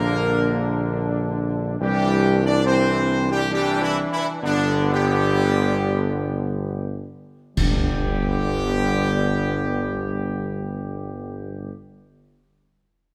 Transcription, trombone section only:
0.00 1.77 D3 loud
0.00 1.77 D4 loud
1.81 2.61 E3 loud
1.81 2.62 D4 loud
2.64 3.47 E3 loud
2.64 3.48 D4 loud
3.50 4.39 E3 loud
3.50 4.39 D4 loud
4.42 7.09 D3 loud
4.42 7.09 B3 loud
7.57 11.71 D3 loud
7.57 11.71 B3 loud

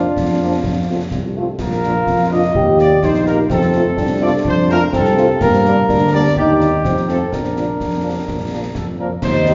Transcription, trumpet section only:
0.00 1.09 F4 medium
1.61 2.28 A#4 medium
2.31 2.79 D#5 medium
2.79 3.01 D5 medium
3.04 3.27 C5 medium
3.26 3.37 A#4 medium
3.51 4.19 A4 medium
4.22 4.33 D5 medium
4.48 4.69 C5 medium
4.71 4.81 A#4 loud
4.94 5.38 A4 medium
5.42 6.09 A#4 medium
6.12 6.35 D5 loud
6.36 7.04 G4 medium
7.08 7.30 A4 medium
7.31 8.75 A#4 medium
8.75 8.86 A4 medium
8.99 9.10 A#4 medium
9.23 9.54 C5 loud

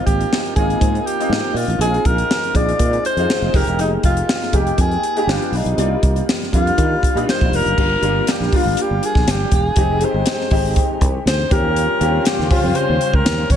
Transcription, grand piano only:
0.00 0.37 A#3 medium
0.00 0.37 C4 medium
0.00 0.37 D#4 medium
0.00 0.37 F4 medium
0.56 1.02 A#3 medium
0.56 1.03 C4 medium
0.56 1.03 D#4 medium
0.56 1.03 F4 medium
1.20 1.65 A#3 medium
1.20 1.65 C4 medium
1.20 1.65 D#4 medium
1.20 1.66 F4 medium
1.80 2.36 G#3 medium
1.80 2.36 C4 medium
1.80 2.36 D#4 medium
1.80 2.36 F4 medium
2.55 3.01 G#3 medium
2.55 3.01 C4 medium
2.55 3.02 D#4 medium
2.55 3.02 F4 medium
3.17 3.52 G#3 medium
3.17 3.54 C4 medium
3.17 3.52 D#4 medium
3.17 3.55 F4 medium
3.53 4.34 G#3 medium
3.53 4.34 A#3 medium
3.53 4.34 D#4 medium
3.53 4.34 G4 medium
4.52 5.00 G#3 medium
4.52 5.00 A#3 medium
4.52 5.00 D#4 medium
4.52 5.00 G4 medium
5.16 5.28 G#3 medium
5.16 5.28 A#3 medium
5.16 5.28 D#4 medium
5.16 5.28 G4 medium
5.27 5.68 G3 medium
5.27 5.69 B3 medium
5.27 5.69 D4 medium
5.27 5.69 F4 medium
5.77 6.33 G3 medium
5.77 6.34 A#3 medium
5.77 6.34 F4 medium
5.77 6.34 D5 medium
6.53 6.76 G3 medium
6.53 6.76 A#3 medium
6.53 6.76 D4 medium
6.53 6.77 F4 medium
6.77 7.08 G3 medium
6.77 7.08 A#3 medium
6.77 7.08 D4 medium
6.77 7.08 F4 medium
7.15 7.62 G3 medium
7.15 7.62 A#3 medium
7.15 7.62 D4 medium
7.15 7.22 D#4 medium
7.22 7.65 F4 medium
7.77 7.96 G3 medium
7.77 7.96 A#3 medium
7.77 7.97 D4 medium
7.77 7.97 F4 medium
8.01 8.40 G3 medium
8.01 8.40 A#3 medium
8.01 8.40 D4 medium
8.01 8.40 F4 medium
8.52 9.26 G3 medium
8.52 9.26 A#3 medium
8.52 9.26 D4 medium
8.52 9.26 F4 medium
9.76 9.95 G#3 medium
9.76 9.95 C4 medium
9.76 9.96 D#4 medium
9.76 9.96 G4 medium
10.00 10.39 G#3 medium
10.00 10.39 C4 medium
10.00 10.39 D#4 medium
10.00 10.39 G4 medium
10.50 11.25 G#3 medium
10.50 11.25 C4 medium
10.50 11.25 D#4 medium
10.50 11.25 G4 medium
11.50 11.91 C4 medium
11.50 11.91 C#4 medium
11.50 11.91 F4 medium
11.50 11.91 G4 medium
12.00 12.38 C4 medium
12.00 12.38 C#4 medium
12.00 12.39 F4 medium
12.00 12.39 G4 medium
12.49 13.24 C4 medium
12.49 13.24 C#4 medium
12.49 13.24 F4 medium
12.49 13.24 G4 medium

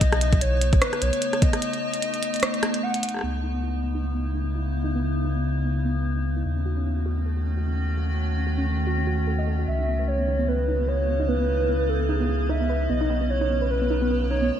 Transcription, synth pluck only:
3.23 3.33 B3 medium
3.43 3.49 D#4 medium
3.55 3.62 B3 medium
3.64 3.73 E4 medium
3.84 3.94 B3 medium
3.95 4.02 D#4 loud
4.04 4.14 B3 loud
4.15 4.22 B3 medium
4.35 4.40 D#4 loud
4.44 4.53 B3 medium
4.55 4.63 E4 medium
4.76 4.84 B3 medium
4.84 4.94 D#4 loud
4.96 5.03 B3 loud
5.04 5.14 B3 medium
5.25 5.30 D#4 loud
5.36 5.43 B3 medium
5.45 5.54 E4 medium
5.65 5.76 B3 medium
5.76 5.84 D#4 loud
5.85 5.95 B3 medium
5.96 6.04 B3 medium
6.16 6.21 D#4 loud
6.25 6.35 B3 medium
6.37 6.44 E4 medium
6.57 6.65 C#4 medium
6.66 6.75 F#4 medium
6.77 6.85 C#4 loud
6.86 6.95 C#4 medium
7.06 7.11 F#4 loud
7.17 7.25 C#4 medium
7.26 7.35 A4 medium
7.46 7.57 C#4 medium
7.57 7.65 F#4 loud
7.66 7.76 C#4 loud
7.77 7.85 C#4 medium
7.98 8.02 F#4 medium
8.06 8.16 C#4 medium
8.18 8.25 A4 medium
8.38 8.46 C#4 medium
8.47 8.56 F#4 loud
8.58 8.66 C#4 loud
8.87 8.93 F#4 loud
8.98 9.06 C#4 medium
9.07 9.17 F#4 loud
9.27 9.37 A4 medium
9.39 9.46 D#5 loud
9.47 9.58 A4 loud
9.59 9.66 F#4 medium
9.79 9.83 D#4 loud
9.88 9.97 B3 medium
9.99 10.06 B4 medium
10.19 10.27 B3 medium
10.28 10.37 D#4 medium
10.39 10.47 B3 loud
10.48 10.58 B3 medium
10.68 10.74 D#4 medium
10.79 10.87 B3 medium
10.88 10.98 B4 medium
11.09 11.19 B3 medium
11.20 11.27 D#4 loud
11.29 11.39 B3 loud
11.40 11.47 B3 medium
11.60 11.64 D#4 loud
11.69 11.78 B3 medium
11.80 11.88 B4 medium
12.00 12.09 B3 medium
12.09 12.19 D#4 loud
12.20 12.28 B3 loud
12.29 12.39 B3 medium
12.49 12.55 D#4 loud
12.61 12.68 B3 medium
12.69 12.79 B4 medium
12.90 13.00 B3 medium
13.01 13.08 D#4 loud
13.10 13.20 B3 loud
13.21 13.28 B3 medium
13.41 13.46 D#4 loud
13.50 13.59 B3 medium
13.61 13.69 B4 medium
13.82 13.90 B3 medium
13.90 14.00 D#4 medium
14.02 14.09 B3 loud
14.11 14.20 B3 medium
14.31 14.36 D#4 loud
14.42 14.49 B3 medium

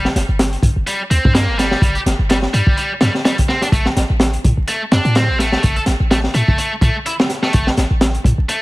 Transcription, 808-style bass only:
0.16 0.24 G1 medium
0.29 0.57 G1 loud
0.63 0.71 G2 medium
0.76 0.83 G1 medium
1.11 1.19 D2 loud
1.25 1.49 G2 loud
1.47 1.75 G1 medium
1.82 1.97 G1 loud
2.06 2.14 G1 medium
2.19 2.47 G1 loud
2.54 2.62 G2 medium
2.67 2.73 G1 medium
3.01 3.09 G2 loud
3.72 3.88 A1 loud
3.96 4.04 A1 medium
4.10 4.38 A1 loud
4.44 4.52 A2 medium
4.57 4.64 A1 medium
4.92 5.00 F#2 loud
5.05 5.30 A2 loud
5.29 5.57 A1 medium
5.64 5.79 A1 loud
5.87 5.95 A1 medium
6.00 6.28 A1 loud
6.34 6.42 A2 medium
6.48 6.54 A1 medium
6.81 6.90 A2 loud
7.54 7.69 A1 loud
7.77 7.85 A1 medium
7.90 8.18 A1 loud
8.24 8.33 A2 medium
8.38 8.45 A1 medium

